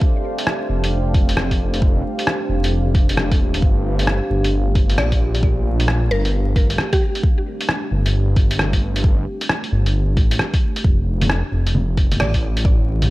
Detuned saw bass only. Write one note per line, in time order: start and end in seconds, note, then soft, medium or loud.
0.69 1.13 F1 medium
1.14 2.04 F1 medium
2.49 3.41 F1 medium
3.40 3.61 D#1 medium
3.62 4.20 G1 medium
4.30 4.99 G1 medium
4.98 6.10 A#1 medium
6.11 6.77 G1 medium
7.91 8.35 G1 medium
8.36 9.25 G1 medium
9.72 10.16 G1 medium
10.17 10.38 A1 medium
10.85 11.42 F1 medium
11.52 12.21 F1 medium
12.20 13.10 A1 medium